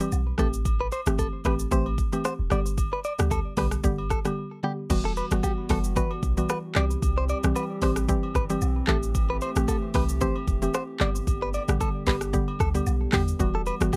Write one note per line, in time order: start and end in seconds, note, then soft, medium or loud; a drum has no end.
0.00 0.19 E3 medium
0.00 0.20 G3 medium
0.00 0.20 C4 medium
0.00 0.20 G4 medium
0.00 high agogo medium
0.00 shaker medium
0.12 0.32 B1 medium
0.12 low woodblock medium
0.12 shaker medium
0.38 0.90 A1 loud
0.38 0.59 E3 medium
0.38 0.59 A3 medium
0.38 0.59 C4 medium
0.38 0.60 G4 medium
0.38 0.47 A4 medium
0.38 kick medium
0.38 cross-stick medium
0.38 high agogo medium
0.38 shaker soft
0.53 shaker medium
0.65 kick loud
0.65 high agogo medium
0.65 shaker medium
0.81 0.87 B4 medium
0.92 1.00 C5 medium
0.92 high agogo medium
0.92 shaker medium
1.06 1.26 G1 medium
1.06 1.42 E3 medium
1.06 1.42 A3 medium
1.06 1.42 C4 medium
1.06 1.42 G4 medium
1.06 cross-stick loud
1.06 shaker medium
1.18 1.27 A4 medium
1.18 kick medium
1.18 high agogo medium
1.18 shaker medium
1.45 1.65 A1 loud
1.45 1.70 E3 medium
1.45 1.70 A3 medium
1.45 1.70 C4 medium
1.45 1.70 G4 medium
1.45 1.53 B4 medium
1.45 kick medium
1.45 cross-stick loud
1.45 high agogo medium
1.45 shaker soft
1.59 shaker medium
1.71 2.02 A1 loud
1.71 1.92 E3 medium
1.71 1.92 A3 medium
1.71 1.92 C4 medium
1.71 1.92 G4 loud
1.71 1.86 C5 medium
1.71 kick loud
1.71 shaker medium
1.86 high agogo medium
1.98 kick medium
1.98 shaker medium
2.12 2.32 E3 medium
2.12 2.32 A3 medium
2.12 2.32 C4 medium
2.12 2.32 G4 medium
2.12 high agogo medium
2.12 shaker medium
2.24 2.33 C5 medium
2.24 cross-stick loud
2.24 low woodblock medium
2.24 shaker medium
2.39 2.48 E1 medium
2.50 2.91 G1 loud
2.50 2.72 D3 medium
2.50 2.72 G3 medium
2.50 2.72 B3 medium
2.50 2.72 G4 medium
2.50 2.59 D5 medium
2.50 cross-stick medium
2.50 high agogo medium
2.50 shaker soft
2.66 shaker medium
2.78 kick loud
2.78 high agogo medium
2.78 shaker medium
2.93 2.99 B4 medium
3.04 3.12 D5 medium
3.04 high agogo medium
3.04 shaker medium
3.19 3.39 D2 medium
3.19 3.54 D3 medium
3.19 3.54 G3 medium
3.19 3.55 B3 medium
3.19 3.55 G4 medium
3.19 cross-stick loud
3.19 shaker medium
3.31 3.39 A4 medium
3.31 kick medium
3.31 high agogo medium
3.31 shaker medium
3.57 3.77 B1 medium
3.57 3.82 D3 medium
3.57 3.82 G3 medium
3.57 3.82 B3 medium
3.57 3.82 G4 medium
3.57 3.66 B4 medium
3.57 kick medium
3.57 cross-stick medium
3.57 open hi-hat medium
3.57 high agogo medium
3.57 shaker medium
3.71 cross-stick loud
3.71 shaker medium
3.84 4.15 G1 loud
3.84 4.04 D3 loud
3.84 4.04 G3 medium
3.84 4.05 B3 medium
3.84 4.05 G4 loud
3.84 kick loud
3.84 shaker medium
3.98 high agogo medium
4.10 4.19 A4 medium
4.10 kick medium
4.10 cross-stick medium
4.10 shaker medium
4.25 4.44 D3 medium
4.25 4.44 G3 medium
4.25 4.44 B3 medium
4.25 4.44 G4 medium
4.25 cross-stick medium
4.25 high agogo medium
4.25 shaker medium
4.63 4.84 D3 medium
4.63 4.84 G3 medium
4.63 4.84 B3 medium
4.63 4.84 G4 medium
4.63 4.72 G4 medium
4.90 5.21 E1 loud
4.90 5.28 E3 medium
4.90 10.97 E3 medium
4.90 5.28 G3 medium
4.90 6.74 G3 medium
4.90 5.28 B3 medium
4.90 6.74 B3 medium
4.90 6.74 F#4 medium
4.90 5.28 F#4 loud
4.90 kick loud
4.90 crash loud
4.90 high agogo medium
4.90 shaker medium
5.05 5.11 A4 medium
5.17 5.25 B4 medium
5.17 high agogo medium
5.17 shaker medium
5.31 5.40 G1 loud
5.31 5.67 E3 medium
5.31 5.67 G3 medium
5.31 5.67 B3 medium
5.31 5.67 F#4 medium
5.31 cross-stick loud
5.31 shaker medium
5.43 5.51 G4 medium
5.43 kick medium
5.43 high agogo medium
5.43 low woodblock medium
5.43 shaker medium
5.69 6.01 F#1 loud
5.69 5.94 E3 medium
5.69 5.94 G3 medium
5.69 5.94 B3 medium
5.69 5.95 F#4 medium
5.69 5.78 A4 medium
5.69 kick medium
5.69 cross-stick loud
5.69 open hi-hat medium
5.69 high agogo medium
5.69 shaker medium
5.84 shaker medium
5.96 6.17 E3 loud
5.96 6.17 G3 medium
5.96 6.17 B3 medium
5.96 6.17 F#4 loud
5.96 6.11 B4 medium
5.96 kick loud
5.96 shaker medium
6.11 high agogo medium
6.23 6.43 B1 medium
6.23 kick medium
6.23 shaker medium
6.37 6.57 E3 medium
6.37 6.57 G3 medium
6.37 6.57 B3 medium
6.37 6.57 F#4 medium
6.37 high agogo medium
6.37 shaker medium
6.49 6.57 B4 medium
6.49 cross-stick loud
6.49 low woodblock medium
6.49 shaker medium
6.75 6.96 C2 loud
6.75 6.96 E3 medium
6.75 6.96 G3 medium
6.75 8.86 G3 medium
6.75 10.97 C4 medium
6.75 6.97 C4 medium
6.75 8.86 G4 medium
6.75 6.97 G4 medium
6.75 6.84 D5 medium
6.75 cross-stick medium
6.75 clap medium
6.75 high agogo medium
6.75 shaker soft
6.91 shaker medium
7.02 7.33 C2 loud
7.02 kick loud
7.02 high agogo medium
7.02 shaker medium
7.18 7.24 C5 medium
7.29 7.37 D5 medium
7.29 high agogo medium
7.29 shaker medium
7.43 7.53 B1 loud
7.43 7.79 E3 medium
7.43 7.79 G3 medium
7.43 7.79 C4 medium
7.43 7.79 G4 medium
7.43 cross-stick loud
7.43 shaker medium
7.55 7.64 B4 medium
7.55 high agogo medium
7.55 low woodblock medium
7.55 shaker medium
7.82 8.13 A1 loud
7.82 8.07 E3 medium
7.82 8.07 G3 medium
7.82 8.07 C4 medium
7.82 8.07 G4 medium
7.82 7.90 C5 medium
7.82 kick medium
7.82 cross-stick loud
7.82 open hi-hat medium
7.82 high agogo medium
7.82 shaker medium
7.96 cross-stick loud
7.96 shaker medium
8.08 8.29 E3 medium
8.08 8.29 G3 medium
8.08 8.29 C4 medium
8.08 8.29 G4 loud
8.08 kick loud
8.08 shaker medium
8.23 high agogo medium
8.35 8.55 G1 loud
8.35 8.43 B4 medium
8.35 kick medium
8.35 cross-stick medium
8.35 shaker medium
8.50 8.69 E3 medium
8.50 8.69 G3 medium
8.50 8.69 C4 medium
8.50 8.69 G4 medium
8.50 high agogo medium
8.50 shaker medium
8.61 8.82 B1 loud
8.61 low woodblock medium
8.61 shaker medium
8.87 9.39 A1 loud
8.87 9.09 E3 medium
8.87 9.09 A3 medium
8.87 10.99 A3 medium
8.87 9.09 C4 medium
8.87 10.99 G4 medium
8.87 9.09 G4 medium
8.87 8.96 A4 medium
8.87 kick medium
8.87 cross-stick medium
8.87 clap medium
8.87 high agogo medium
8.87 shaker soft
9.03 shaker medium
9.15 kick loud
9.15 high agogo medium
9.15 shaker medium
9.30 9.36 B4 medium
9.41 9.50 C5 medium
9.41 high agogo loud
9.41 shaker medium
9.56 9.65 A1 medium
9.56 9.92 E3 medium
9.56 9.92 A3 medium
9.56 9.92 C4 medium
9.56 9.92 G4 medium
9.56 cross-stick loud
9.56 shaker medium
9.68 9.76 A4 medium
9.68 kick medium
9.68 high agogo medium
9.68 low woodblock medium
9.68 shaker medium
9.94 10.25 C2 medium
9.94 10.19 E3 medium
9.94 10.19 A3 medium
9.94 10.19 C4 medium
9.94 10.19 G4 medium
9.94 10.03 B4 medium
9.94 kick medium
9.94 cross-stick medium
9.94 open hi-hat medium
9.94 high agogo medium
9.94 shaker medium
10.09 shaker medium
10.21 10.41 E3 loud
10.21 10.42 A3 medium
10.21 10.42 C4 medium
10.21 10.42 G4 loud
10.21 10.35 C5 medium
10.21 kick loud
10.21 shaker medium
10.36 high agogo medium
10.48 10.68 E1 loud
10.48 kick medium
10.48 shaker medium
10.62 10.81 E3 medium
10.62 10.81 A3 medium
10.62 10.81 C4 medium
10.62 10.82 G4 medium
10.62 high agogo medium
10.62 shaker medium
10.74 10.82 C5 medium
10.74 cross-stick loud
10.74 low woodblock medium
10.74 shaker medium
11.00 11.21 G1 loud
11.00 11.21 D3 medium
11.00 13.37 D3 medium
11.00 11.21 G3 medium
11.00 13.96 G3 medium
11.00 11.21 B3 medium
11.00 13.96 B3 medium
11.00 13.37 G4 loud
11.00 11.21 G4 medium
11.00 11.09 D5 medium
11.00 cross-stick medium
11.00 clap medium
11.00 high agogo medium
11.00 shaker soft
11.15 shaker medium
11.27 11.58 G1 loud
11.27 kick loud
11.27 high agogo medium
11.27 shaker medium
11.42 11.49 B4 medium
11.54 11.62 D5 medium
11.54 high agogo medium
11.54 shaker medium
11.68 11.77 A1 loud
11.68 12.04 D3 medium
11.68 12.04 G3 medium
11.68 12.04 B3 medium
11.68 12.04 G4 medium
11.68 cross-stick loud
11.68 shaker medium
11.80 11.88 A4 medium
11.80 kick loud
11.80 high agogo medium
11.80 shaker medium
12.06 12.38 G1 medium
12.06 12.31 D3 medium
12.06 12.32 G3 medium
12.06 12.32 B3 medium
12.06 12.32 G4 medium
12.06 12.15 B4 medium
12.06 kick medium
12.06 cross-stick medium
12.06 clap loud
12.06 open hi-hat medium
12.06 high agogo medium
12.06 shaker medium
12.21 cross-stick loud
12.21 shaker medium
12.33 12.54 D3 loud
12.33 12.54 G3 medium
12.33 12.54 B3 medium
12.33 12.54 G4 loud
12.33 kick loud
12.33 shaker medium
12.48 high agogo medium
12.60 12.80 D2 loud
12.60 12.68 A4 medium
12.60 kick medium
12.60 cross-stick medium
12.60 shaker medium
12.74 12.94 D3 medium
12.74 12.94 G3 medium
12.74 12.94 B3 medium
12.74 12.94 G4 medium
12.74 high agogo medium
12.74 shaker medium
12.86 13.07 B1 loud
12.86 low woodblock medium
12.86 shaker medium
13.12 13.33 E2 medium
13.12 13.34 D3 medium
13.12 13.34 G3 medium
13.12 13.34 B3 medium
13.12 13.34 G4 medium
13.12 13.21 G4 medium
13.12 kick medium
13.12 cross-stick medium
13.12 clap medium
13.12 open hi-hat medium
13.12 high agogo medium
13.12 shaker soft
13.28 shaker medium
13.39 13.71 E1 loud
13.39 13.77 E3 medium
13.39 13.96 E3 medium
13.39 13.77 G3 medium
13.39 13.77 B3 medium
13.39 13.96 F#4 medium
13.39 13.78 F#4 loud
13.39 kick loud
13.39 high agogo medium
13.39 shaker medium
13.55 13.61 A4 medium
13.66 13.74 B4 medium
13.66 high agogo medium
13.66 shaker medium
13.80 13.90 G1 medium
13.80 13.96 E3 medium
13.80 13.96 G3 medium
13.80 13.96 B3 medium
13.80 13.96 F#4 medium
13.80 cross-stick loud
13.80 shaker medium
13.93 13.96 G4 medium
13.93 kick loud
13.93 high agogo medium
13.93 low woodblock medium
13.93 shaker medium